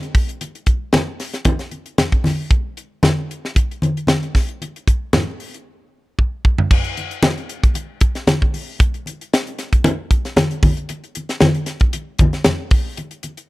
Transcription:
0.03 closed hi-hat soft
0.15 kick medium
0.15 open hi-hat medium
0.29 closed hi-hat soft
0.41 closed hi-hat medium
0.41 muted conga soft
0.55 closed hi-hat soft
0.66 kick medium
0.66 closed hi-hat medium
0.93 snare medium
0.93 closed hi-hat medium
0.93 muted conga soft
0.93 high conga medium
1.20 snare soft
1.20 open hi-hat medium
1.33 snare soft
1.33 closed hi-hat soft
1.45 kick medium
1.45 closed hi-hat medium
1.45 muted conga soft
1.45 high conga medium
1.59 snare soft
1.59 closed hi-hat soft
1.71 closed hi-hat soft
1.71 muted conga soft
1.86 closed hi-hat soft
1.98 snare medium
1.98 closed hi-hat medium
1.98 high conga medium
2.12 kick medium
2.12 closed hi-hat soft
2.24 snare soft
2.24 open hi-hat medium
2.24 high conga medium
2.51 kick medium
2.51 closed hi-hat medium
2.51 muted conga soft
2.77 closed hi-hat medium
3.03 snare medium
3.03 closed hi-hat medium
3.03 muted conga soft
3.03 high conga loud
3.31 closed hi-hat medium
3.45 snare soft
3.55 kick medium
3.55 closed hi-hat medium
3.55 muted conga soft
3.71 closed hi-hat soft
3.82 closed hi-hat medium
3.82 muted conga soft
3.82 high conga medium
3.97 closed hi-hat soft
4.07 snare medium
4.07 closed hi-hat medium
4.07 high conga medium
4.23 closed hi-hat soft
4.35 kick medium
4.35 snare soft
4.35 open hi-hat medium
4.49 closed hi-hat soft
4.62 closed hi-hat medium
4.62 muted conga soft
4.76 closed hi-hat soft
4.88 kick medium
4.88 closed hi-hat medium
5.13 snare loud
5.13 closed hi-hat medium
5.13 muted conga soft
5.13 high conga medium
5.13 low conga medium
5.40 open hi-hat medium
5.54 closed hi-hat soft
6.19 kick soft
6.45 kick medium
6.58 floor tom medium
6.71 kick medium
6.71 crash medium
6.71 muted conga soft
6.84 closed hi-hat soft
6.97 closed hi-hat medium
6.97 muted conga soft
7.11 closed hi-hat soft
7.23 snare loud
7.23 closed hi-hat medium
7.23 high conga loud
7.38 closed hi-hat soft
7.49 closed hi-hat medium
7.64 kick medium
7.64 closed hi-hat soft
7.74 closed hi-hat medium
7.74 muted conga soft
8.01 kick medium
8.01 closed hi-hat medium
8.15 snare soft
8.15 closed hi-hat soft
8.27 snare loud
8.27 closed hi-hat medium
8.27 high conga medium
8.42 kick medium
8.54 open hi-hat medium
8.54 muted conga soft
8.79 kick loud
8.79 closed hi-hat medium
8.79 muted conga soft
8.94 closed hi-hat soft
9.06 closed hi-hat medium
9.06 muted conga soft
9.21 closed hi-hat soft
9.33 snare loud
9.33 closed hi-hat medium
9.47 closed hi-hat soft
9.59 snare soft
9.59 closed hi-hat medium
9.73 kick medium
9.73 closed hi-hat soft
9.84 closed hi-hat medium
9.84 muted conga soft
9.84 high conga loud
10.11 kick medium
10.11 closed hi-hat medium
10.25 snare soft
10.25 closed hi-hat soft
10.36 snare loud
10.36 closed hi-hat medium
10.36 high conga medium
10.51 closed hi-hat soft
10.63 kick medium
10.63 open hi-hat medium
10.63 muted conga soft
10.63 high conga medium
10.77 closed hi-hat soft
10.89 closed hi-hat medium
10.89 muted conga soft
11.04 closed hi-hat soft
11.15 closed hi-hat medium
11.15 muted conga soft
11.29 snare soft
11.29 closed hi-hat soft
11.40 snare medium
11.40 closed hi-hat medium
11.40 high conga loud
11.55 closed hi-hat soft
11.66 snare soft
11.66 closed hi-hat medium
11.80 kick medium
11.80 closed hi-hat soft
11.93 closed hi-hat medium
11.93 muted conga soft
12.19 kick medium
12.19 closed hi-hat medium
12.19 high conga medium
12.33 snare soft
12.33 closed hi-hat soft
12.44 snare loud
12.44 closed hi-hat medium
12.44 high conga medium
12.71 kick loud
12.71 open hi-hat medium
12.71 muted conga soft
12.97 closed hi-hat medium
12.97 muted conga soft
13.11 closed hi-hat soft
13.23 closed hi-hat medium
13.23 muted conga soft
13.37 closed hi-hat soft

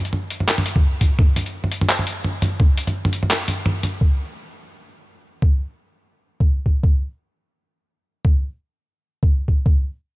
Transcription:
0.05 closed hi-hat soft
0.13 mid tom medium
0.30 closed hi-hat medium
0.40 mid tom medium
0.48 clap loud
0.58 mid tom medium
0.66 closed hi-hat medium
0.76 kick loud
0.76 mid tom medium
1.01 kick medium
1.01 closed hi-hat medium
1.01 mid tom medium
1.19 kick loud
1.19 mid tom medium
1.36 closed hi-hat medium
1.36 mid tom medium
1.46 closed hi-hat soft
1.64 mid tom medium
1.72 closed hi-hat medium
1.81 mid tom medium
1.89 clap loud
1.99 mid tom medium
2.07 closed hi-hat medium
2.25 mid tom medium
2.42 closed hi-hat medium
2.42 mid tom medium
2.60 kick loud
2.60 mid tom medium
2.78 closed hi-hat medium
2.87 closed hi-hat soft
2.87 mid tom medium
3.05 mid tom medium
3.13 closed hi-hat medium
3.23 mid tom medium
3.30 clap loud
3.48 closed hi-hat medium
3.48 mid tom medium
3.66 mid tom medium
3.83 closed hi-hat medium
3.83 mid tom medium
4.01 kick loud
5.42 kick loud
6.40 kick loud
6.66 kick medium
6.84 kick loud
8.25 kick loud
9.23 kick loud
9.48 kick medium
9.66 kick loud

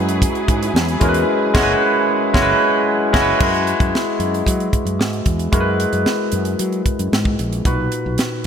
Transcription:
0.00 0.26 F#2 medium
0.00 3.36 F#3 medium
0.00 0.97 G#3 medium
0.00 0.97 C#4 medium
0.00 0.97 E4 medium
0.00 3.36 E4 medium
0.00 0.97 F#4 medium
0.00 3.36 G#4 medium
0.00 1.01 B4 medium
0.00 3.37 B4 medium
0.09 closed hi-hat medium
0.22 kick medium
0.22 closed hi-hat loud
0.35 closed hi-hat soft
0.48 0.69 G#2 medium
0.48 kick medium
0.48 closed hi-hat medium
0.63 closed hi-hat medium
0.74 0.95 E2 medium
0.74 snare loud
0.88 closed hi-hat soft
1.00 1.22 E2 loud
1.00 1.27 G#3 medium
1.00 1.27 C#4 medium
1.00 1.27 E4 medium
1.00 1.28 F#4 medium
1.00 1.08 A#4 medium
1.00 kick medium
1.00 closed hi-hat medium
1.09 1.31 B4 medium
1.14 closed hi-hat medium
1.54 1.72 F#1 loud
1.54 1.72 G#3 loud
1.54 1.73 C#4 loud
1.54 1.73 E4 loud
1.54 1.73 F#4 loud
1.54 kick loud
1.54 snare loud
1.54 crash medium
1.63 1.77 B4 loud
2.33 2.52 F#1 medium
2.33 2.52 G#3 loud
2.33 2.52 C#4 loud
2.33 2.52 E4 loud
2.33 2.53 F#4 medium
2.33 kick loud
2.33 snare loud
2.42 2.57 B4 loud
3.13 3.32 F#1 loud
3.13 3.31 G#3 loud
3.13 3.31 C#4 loud
3.13 3.32 E4 loud
3.13 3.32 F#4 loud
3.13 kick loud
3.13 snare loud
3.13 crash medium
3.22 3.36 B4 loud
3.39 3.72 F#2 loud
3.39 5.48 G#3 medium
3.39 5.49 E4 medium
3.39 5.49 F#4 medium
3.39 3.47 A#4 medium
3.39 kick loud
3.39 crash medium
3.48 5.53 B4 medium
3.54 closed hi-hat soft
3.67 closed hi-hat medium
3.80 3.91 F#2 medium
3.80 kick loud
3.80 closed hi-hat medium
3.95 snare loud
4.20 4.41 F#2 medium
4.20 closed hi-hat medium
4.34 closed hi-hat medium
4.46 4.68 F#3 medium
4.46 kick medium
4.46 closed hi-hat loud
4.60 closed hi-hat soft
4.73 kick medium
4.73 closed hi-hat medium
4.85 4.99 F#2 medium
4.85 closed hi-hat medium
4.99 5.21 G#2 medium
4.99 snare loud
5.13 closed hi-hat soft
5.26 5.47 E2 medium
5.26 kick medium
5.26 closed hi-hat medium
5.39 closed hi-hat soft
5.52 5.85 F#2 loud
5.52 7.62 G#3 medium
5.52 7.62 E4 medium
5.52 7.62 F#4 medium
5.52 5.60 A#4 medium
5.52 kick loud
5.52 closed hi-hat medium
5.60 7.66 B4 medium
5.80 closed hi-hat medium
5.93 6.03 F#2 medium
5.93 closed hi-hat medium
6.06 snare medium
6.32 6.54 F#2 medium
6.32 closed hi-hat medium
6.45 closed hi-hat soft
6.59 6.81 F#3 medium
6.59 closed hi-hat medium
6.72 closed hi-hat soft
6.86 kick medium
6.86 closed hi-hat medium
6.99 7.10 F#2 medium
6.99 closed hi-hat medium
7.12 7.34 G#2 medium
7.12 snare loud
7.25 kick medium
7.39 7.61 A#1 medium
7.39 closed hi-hat medium
7.53 closed hi-hat soft
7.65 7.87 B1 loud
7.65 8.46 A#2 medium
7.65 8.46 D#4 medium
7.65 8.46 F#4 medium
7.65 8.46 B4 medium
7.65 kick loud
7.65 closed hi-hat medium
7.92 closed hi-hat medium
8.06 8.17 B1 medium
8.18 snare loud
8.18 closed hi-hat medium

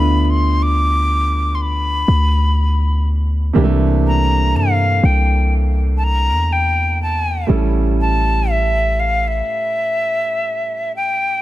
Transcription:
0.00 2.04 D2 loud
0.00 3.51 D3 medium
0.00 3.53 B3 medium
0.00 3.51 D4 medium
0.00 3.51 E4 medium
0.00 3.52 F4 medium
0.00 3.52 A4 medium
0.00 0.24 B5 medium
0.24 0.31 B5 medium
0.30 0.64 C6 medium
0.62 1.56 D6 loud
1.55 1.63 C6 medium
1.61 3.08 B5 medium
2.08 3.52 D2 loud
3.53 4.55 C2 medium
3.53 7.44 C3 medium
3.53 7.45 E3 medium
3.53 7.45 A#3 medium
3.53 7.45 D4 medium
3.53 3.64 G4 medium
3.64 7.49 A3 medium
4.07 4.58 A#5 medium
4.54 5.01 G2 medium
4.54 5.07 F5 medium
5.03 6.32 C2 loud
5.03 5.53 G5 medium
5.97 6.05 A5 medium
6.04 6.54 A#5 loud
6.30 7.45 E2 medium
6.52 7.01 G5 medium
7.02 7.47 A5 medium
7.47 9.42 A1 loud
7.47 11.38 A2 medium
7.47 11.38 G3 medium
7.47 11.39 C#4 medium
7.47 11.39 E4 medium
7.47 11.39 A4 medium
8.01 8.52 A5 loud
8.50 9.01 E5 medium
9.00 9.29 F5 medium
9.28 10.95 E5 medium
10.96 11.42 G5 medium

